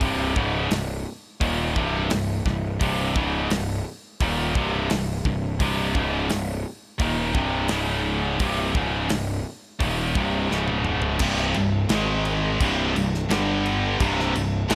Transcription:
0.01 0.34 C1 medium
0.01 0.35 C2 medium
0.01 0.36 G2 medium
0.01 0.36 C3 loud
0.01 kick medium
0.01 open hi-hat soft
0.36 0.69 C#1 medium
0.36 0.70 C#2 medium
0.36 0.70 G#2 medium
0.36 0.70 C#3 loud
0.36 kick loud
0.71 1.03 C1 medium
0.71 0.99 C2 medium
0.71 1.00 G2 medium
0.71 snare loud
0.71 open hi-hat medium
1.41 1.74 D#1 medium
1.41 1.75 D#2 medium
1.41 1.75 A#2 medium
1.41 1.76 D#3 medium
1.41 kick medium
1.41 open hi-hat soft
1.75 2.09 C1 medium
1.75 2.10 C2 medium
1.75 2.10 G2 medium
1.75 2.10 C3 loud
1.75 kick medium
2.10 2.43 C1 medium
2.10 2.39 C2 medium
2.10 2.39 G2 medium
2.10 snare loud
2.10 open hi-hat medium
2.45 2.78 C1 medium
2.45 2.74 C2 medium
2.45 2.74 G2 medium
2.45 kick medium
2.45 snare soft
2.80 3.13 C1 medium
2.80 3.14 C2 loud
2.80 3.15 G2 medium
2.80 3.15 C3 loud
2.80 kick loud
2.80 open hi-hat soft
3.16 3.48 C#1 medium
3.16 3.50 C#2 medium
3.16 3.50 G#2 medium
3.16 3.51 C#3 loud
3.16 kick loud
3.50 3.83 C1 medium
3.50 3.79 C2 medium
3.50 3.79 G2 medium
3.50 snare loud
3.50 open hi-hat medium
4.21 4.53 D#1 medium
4.21 4.54 D#2 medium
4.21 4.55 A#2 medium
4.21 4.55 D#3 medium
4.21 kick loud
4.21 open hi-hat medium
4.55 4.88 C1 medium
4.55 4.89 C2 medium
4.55 4.90 G2 medium
4.55 4.90 C3 medium
4.55 kick loud
4.90 5.23 C1 medium
4.90 5.18 C2 medium
4.90 5.19 G2 medium
4.90 snare loud
4.90 open hi-hat medium
5.25 5.58 C1 medium
5.25 5.54 C2 medium
5.25 5.54 G2 medium
5.25 kick medium
5.60 5.93 C1 medium
5.60 5.94 C2 medium
5.60 5.94 G2 loud
5.60 5.95 C3 loud
5.60 kick loud
5.60 open hi-hat medium
5.94 6.28 C#1 medium
5.94 6.29 C#2 medium
5.94 6.29 G#2 medium
5.94 6.30 C#3 loud
5.94 kick medium
6.29 6.64 C1 medium
6.29 6.58 C2 medium
6.29 6.58 G2 medium
6.29 snare loud
6.29 open hi-hat medium
6.98 7.33 D#1 loud
6.98 7.33 D#2 medium
6.98 7.33 A#2 medium
6.98 7.34 D#3 loud
6.98 kick loud
6.98 open hi-hat soft
7.34 7.68 C1 medium
7.34 7.69 C2 medium
7.34 7.69 G2 medium
7.34 7.70 C3 medium
7.34 kick loud
7.68 8.37 C#1 medium
7.68 8.38 C#2 medium
7.68 8.39 G#2 medium
7.68 8.39 C#3 loud
7.68 snare loud
7.68 open hi-hat medium
8.38 8.73 C1 medium
8.38 8.73 C2 medium
8.38 8.74 G2 medium
8.38 8.74 C3 loud
8.38 kick loud
8.38 open hi-hat soft
8.74 9.08 C#1 medium
8.74 9.09 C#2 medium
8.74 9.09 G#2 medium
8.74 9.09 C#3 loud
8.74 kick loud
9.09 9.43 C1 medium
9.09 9.38 C2 medium
9.09 9.38 G2 medium
9.09 snare loud
9.09 open hi-hat medium
9.79 10.13 D#1 medium
9.79 10.14 D#2 medium
9.79 10.14 A#2 medium
9.79 10.15 D#3 medium
9.79 kick loud
9.79 open hi-hat medium
10.15 10.48 C1 medium
10.15 10.49 C2 medium
10.15 10.49 G2 medium
10.15 10.50 C3 medium
10.15 kick loud
10.51 11.17 C#1 medium
10.51 11.19 C#2 medium
10.51 11.20 G#2 medium
10.51 11.20 C#3 loud
10.51 snare medium
10.68 high tom medium
10.85 mid tom medium
11.02 floor tom medium
11.19 11.53 C1 medium
11.19 11.54 C2 medium
11.19 11.55 G2 loud
11.19 11.55 C3 loud
11.19 kick loud
11.19 crash loud
11.19 crash medium
11.37 snare soft
11.54 11.88 C1 medium
11.54 11.84 C2 medium
11.54 11.84 G2 medium
11.54 crash medium
11.89 12.56 G#1 medium
11.89 12.59 G#2 medium
11.89 12.59 D#3 medium
11.89 12.59 G#3 loud
11.89 snare loud
11.89 crash medium
12.25 crash medium
12.60 12.93 C1 loud
12.60 12.94 C2 medium
12.60 12.94 G2 loud
12.60 12.95 C3 loud
12.60 kick loud
12.60 crash medium
12.95 13.28 C1 medium
12.95 13.23 C2 medium
12.95 13.23 G2 medium
12.95 crash medium
13.14 snare soft
13.29 13.96 G1 medium
13.29 13.98 G2 loud
13.29 13.99 D3 loud
13.29 13.99 G3 loud
13.29 snare loud
13.29 crash medium
13.66 crash medium
13.99 14.33 C1 loud
13.99 14.32 C2 loud
13.99 14.33 G2 loud
13.99 14.34 C3 loud
13.99 kick loud
13.99 crash medium
14.19 snare soft
14.34 14.68 C1 medium
14.34 14.62 C2 medium
14.34 14.62 G2 medium
14.34 crash medium
14.69 14.75 G#1 medium
14.69 14.75 G#2 medium
14.69 14.75 D#3 loud
14.69 14.75 G#3 loud
14.69 snare loud
14.69 crash medium

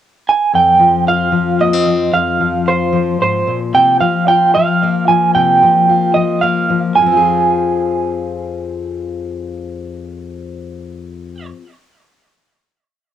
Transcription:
0.29 0.55 G#5 medium
0.53 2.12 F2 soft
0.53 1.08 G5 medium
0.79 1.31 F3 soft
1.07 2.66 F4 soft
1.07 1.63 F5 medium
1.32 1.86 F3 soft
1.60 1.73 A#3 soft
1.60 2.16 D#5 medium
1.73 2.14 C4 soft
1.86 2.40 F3 soft
2.13 3.19 F2 medium
2.13 2.69 F5 medium
2.40 2.92 F3 soft
2.67 4.27 F4 soft
2.67 3.21 C5 medium
2.93 4.00 F3 soft
3.20 3.47 G#2 soft
3.20 3.59 C5 medium
3.47 3.74 A#2 soft
3.73 4.01 C3 medium
3.73 4.00 G5 medium
4.00 4.55 F3 soft
4.00 4.28 F5 medium
4.28 5.89 F4 soft
4.28 4.54 G5 medium
4.55 5.08 F3 soft
4.55 5.08 F5 medium
4.83 6.42 A#3 soft
5.08 5.61 F3 soft
5.08 5.34 G#5 medium
5.35 5.62 C3 medium
5.35 6.18 G5 medium
5.63 6.14 F3 soft
5.89 6.93 F4 soft
6.14 6.69 F3 medium
6.14 6.42 D#5 medium
6.41 6.96 A#3 soft
6.41 6.79 F5 medium
6.70 7.00 F3 soft
6.96 11.50 F2 soft
6.96 11.46 G#5 medium
7.02 11.56 F3 soft
7.06 11.61 C4 soft
7.12 11.66 F4 soft
7.16 11.71 G#4 soft

